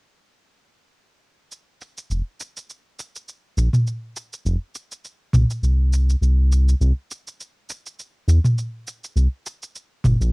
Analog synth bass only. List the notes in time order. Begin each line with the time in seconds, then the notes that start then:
2.10 F1
3.57 A#1
4.45 F1
5.33 C2
5.62 C2
6.21 C2
6.80 C2
8.28 E2
9.16 C2
10.04 G1
10.20 A#1